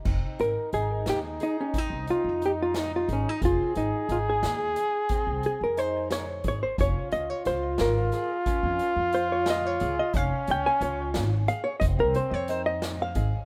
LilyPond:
<<
  \new Staff \with { instrumentName = "Hollow-body jazz guitar" } { \time 5/8 \key f \minor \tempo 4 = 89 r8 bes'8 aes'8 g'8 ees'16 des'16 | ees'8 f'8 g'16 f'16 ees'16 f'16 des'16 ees'16 | f'8 ees'8 f'16 aes'8 r8. | r8 aes'16 bes'16 c''8 des''8 des''16 c''16 |
des''8 ees''16 des''16 c''8 bes'4 | r4 c''16 des''16 ees''16 des''8 ees''16 | f''8 g''16 aes''16 des''8 r8 f''16 des''16 | ees''16 bes'16 c''16 des''16 c''16 ees''8 f''8. | }
  \new Staff \with { instrumentName = "Flugelhorn" } { \time 5/8 \key f \minor ees'2~ ees'8~ | ees'2~ ees'8 | aes'2~ aes'8~ | aes'2 r8 |
f'2~ f'8~ | f'2~ f'8 | des'2 r8 | c'2 r8 | }
  \new Staff \with { instrumentName = "Twelve-string acoustic guitar" } { \time 5/8 \key f \minor c'4 ees'4 aes'8 | c'4 ees'4 aes'8 | c'4 ees'4 aes'8 | c'4 ees'4 aes'8 |
des'4 f'4 aes'8 | des'4 f'4 aes'8 | des'4 f'4 aes'8 | c'4 ees'4 aes'8 | }
  \new Staff \with { instrumentName = "Upright bass" } { \clef bass \time 5/8 \key f \minor f,,16 r16 aes,,16 r16 aes,,8 ees,8 r8 | r16 c,16 r16 f,4~ f,16 aes,,16 r16 | f,,16 r16 aes,,16 r16 aes,,8 ees,8 r8 | r16 c,16 r16 f,4~ f,16 aes,,16 r16 |
f,,16 r16 des,16 r16 des,8 aes,,8 r8 | r16 f,16 r16 f,4~ f,16 des,16 r16 | f,,16 r16 des,16 r16 des,8 aes,,8 r8 | f,,16 c,16 r16 f,4~ f,16 aes,,16 r16 | }
  \new DrumStaff \with { instrumentName = "Drums" } \drummode { \time 5/8 <cymc bd>8 hh8 hh8 <hh sn>8 hh8 | <hh bd>8 hh8 hh8 <hh sn>8 hh8 | <hh bd>8 hh8 hh8 <hh sn>8 hh8 | <hh bd>8 hh8 hh8 <hh sn>8 <hh bd>8 |
<hh bd>8 hh8 <hh sn>8 <hh sn>8 <hh sn>8 | <hh bd>8 hh8 hh8 <hh sn>8 hh8 | <hh bd>8 hh8 hh8 <hh sn>8 hh8 | <hh bd>8 hh8 hh8 <hh sn>8 <hh bd>8 | }
>>